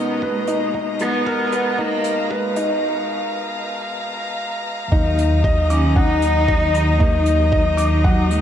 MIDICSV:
0, 0, Header, 1, 6, 480
1, 0, Start_track
1, 0, Key_signature, -6, "minor"
1, 0, Tempo, 521739
1, 684, Time_signature, 4, 2, 24, 8
1, 7739, End_track
2, 0, Start_track
2, 0, Title_t, "Felt piano"
2, 0, Program_c, 0, 0
2, 0, Control_c, 0, 64, 127
2, 0, Note_on_c, 0, 63, 72
2, 0, Note_on_c, 0, 70, 99
2, 0, Note_on_c, 0, 71, 72
2, 204, Note_off_c, 0, 71, 0
2, 204, Note_on_c, 0, 71, 79
2, 341, Note_off_c, 0, 71, 0
2, 439, Note_off_c, 0, 63, 0
2, 439, Note_on_c, 0, 63, 78
2, 669, Note_off_c, 0, 63, 0
2, 686, Note_on_c, 0, 63, 77
2, 822, Note_off_c, 0, 63, 0
2, 1163, Note_off_c, 0, 70, 0
2, 1163, Note_on_c, 0, 70, 103
2, 1300, Note_off_c, 0, 70, 0
2, 1399, Note_on_c, 0, 71, 77
2, 1629, Note_off_c, 0, 71, 0
2, 1641, Note_on_c, 0, 63, 75
2, 1870, Note_off_c, 0, 63, 0
2, 2119, Note_on_c, 0, 71, 80
2, 2258, Note_off_c, 0, 71, 0
2, 2359, Note_on_c, 0, 63, 77
2, 2589, Note_off_c, 0, 63, 0
2, 4525, Note_on_c, 0, 63, 95
2, 4534, Control_c, 0, 64, 0
2, 4706, Control_c, 0, 64, 127
2, 4752, Note_off_c, 0, 63, 0
2, 5008, Note_on_c, 0, 75, 97
2, 5234, Note_off_c, 0, 75, 0
2, 5246, Note_on_c, 0, 86, 75
2, 5473, Note_off_c, 0, 86, 0
2, 5484, Note_on_c, 0, 78, 82
2, 5712, Note_off_c, 0, 78, 0
2, 5963, Note_on_c, 0, 75, 105
2, 6100, Note_off_c, 0, 75, 0
2, 6203, Note_on_c, 0, 82, 74
2, 6431, Note_off_c, 0, 82, 0
2, 6439, Note_on_c, 0, 63, 97
2, 6669, Note_off_c, 0, 63, 0
2, 6917, Note_on_c, 0, 75, 94
2, 7148, Note_off_c, 0, 75, 0
2, 7151, Note_on_c, 0, 86, 79
2, 7385, Note_off_c, 0, 86, 0
2, 7400, Note_on_c, 0, 78, 83
2, 7629, Note_off_c, 0, 78, 0
2, 7739, End_track
3, 0, Start_track
3, 0, Title_t, "String quartet"
3, 0, Program_c, 1, 48
3, 0, Note_on_c, 1, 47, 72
3, 0, Note_on_c, 1, 56, 70
3, 0, Note_on_c, 1, 75, 67
3, 0, Note_on_c, 1, 82, 65
3, 1778, Note_on_c, 1, 77, 72
3, 1914, Note_off_c, 1, 75, 0
3, 4519, Note_off_c, 1, 56, 0
3, 4521, Note_off_c, 1, 47, 0
3, 4536, Note_on_c, 1, 54, 70
3, 4620, Note_on_c, 1, 63, 85
3, 5088, Note_on_c, 1, 75, 79
3, 5849, Note_off_c, 1, 77, 0
3, 7739, Note_off_c, 1, 54, 0
3, 7739, Note_off_c, 1, 63, 0
3, 7739, Note_off_c, 1, 75, 0
3, 7739, Note_off_c, 1, 82, 0
3, 7739, End_track
4, 0, Start_track
4, 0, Title_t, "Cello"
4, 0, Program_c, 2, 42
4, 0, Note_on_c, 2, 59, 103
4, 220, Note_on_c, 2, 58, 83
4, 233, Note_off_c, 2, 59, 0
4, 276, Note_on_c, 2, 56, 70
4, 290, Note_off_c, 2, 58, 0
4, 357, Note_on_c, 2, 58, 84
4, 370, Note_off_c, 2, 56, 0
4, 696, Note_off_c, 2, 58, 0
4, 926, Note_on_c, 2, 59, 127
4, 1655, Note_on_c, 2, 58, 112
4, 1669, Note_off_c, 2, 59, 0
4, 2128, Note_on_c, 2, 56, 95
4, 2142, Note_off_c, 2, 58, 0
4, 2606, Note_off_c, 2, 56, 0
4, 5252, Note_on_c, 2, 61, 103
4, 5494, Note_on_c, 2, 63, 127
4, 5508, Note_off_c, 2, 61, 0
4, 6439, Note_on_c, 2, 58, 99
4, 6453, Note_off_c, 2, 63, 0
4, 6675, Note_off_c, 2, 58, 0
4, 6680, Note_on_c, 2, 58, 85
4, 7128, Note_off_c, 2, 58, 0
4, 7403, Note_on_c, 2, 54, 94
4, 7640, Note_on_c, 2, 56, 87
4, 7654, Note_off_c, 2, 54, 0
4, 7739, Note_off_c, 2, 56, 0
4, 7739, End_track
5, 0, Start_track
5, 0, Title_t, "Detuned saw bass"
5, 0, Program_c, 3, 39
5, 4524, Note_on_c, 3, 39, 91
5, 7739, Note_off_c, 3, 39, 0
5, 7739, End_track
6, 0, Start_track
6, 0, Title_t, "Drums"
6, 204, Note_on_c, 9, 36, 86
6, 296, Note_off_c, 9, 36, 0
6, 435, Note_on_c, 9, 42, 72
6, 527, Note_off_c, 9, 42, 0
6, 683, Note_on_c, 9, 36, 97
6, 775, Note_off_c, 9, 36, 0
6, 913, Note_on_c, 9, 42, 63
6, 1005, Note_off_c, 9, 42, 0
6, 1163, Note_on_c, 9, 36, 93
6, 1255, Note_off_c, 9, 36, 0
6, 1401, Note_on_c, 9, 42, 67
6, 1493, Note_off_c, 9, 42, 0
6, 1643, Note_on_c, 9, 36, 100
6, 1735, Note_off_c, 9, 36, 0
6, 1877, Note_on_c, 9, 42, 75
6, 1969, Note_off_c, 9, 42, 0
6, 2123, Note_on_c, 9, 36, 88
6, 2215, Note_off_c, 9, 36, 0
6, 2355, Note_on_c, 9, 42, 68
6, 2447, Note_off_c, 9, 42, 0
6, 4526, Note_on_c, 9, 36, 97
6, 4618, Note_off_c, 9, 36, 0
6, 4769, Note_on_c, 9, 42, 63
6, 4861, Note_off_c, 9, 42, 0
6, 5006, Note_on_c, 9, 36, 104
6, 5098, Note_off_c, 9, 36, 0
6, 5243, Note_on_c, 9, 42, 77
6, 5335, Note_off_c, 9, 42, 0
6, 5487, Note_on_c, 9, 36, 108
6, 5579, Note_off_c, 9, 36, 0
6, 5722, Note_on_c, 9, 42, 77
6, 5814, Note_off_c, 9, 42, 0
6, 5967, Note_on_c, 9, 36, 96
6, 6059, Note_off_c, 9, 36, 0
6, 6207, Note_on_c, 9, 42, 78
6, 6299, Note_off_c, 9, 42, 0
6, 6446, Note_on_c, 9, 36, 103
6, 6538, Note_off_c, 9, 36, 0
6, 6676, Note_on_c, 9, 42, 82
6, 6768, Note_off_c, 9, 42, 0
6, 6925, Note_on_c, 9, 36, 98
6, 7017, Note_off_c, 9, 36, 0
6, 7156, Note_on_c, 9, 42, 85
6, 7248, Note_off_c, 9, 42, 0
6, 7404, Note_on_c, 9, 36, 109
6, 7496, Note_off_c, 9, 36, 0
6, 7642, Note_on_c, 9, 42, 74
6, 7734, Note_off_c, 9, 42, 0
6, 7739, End_track
0, 0, End_of_file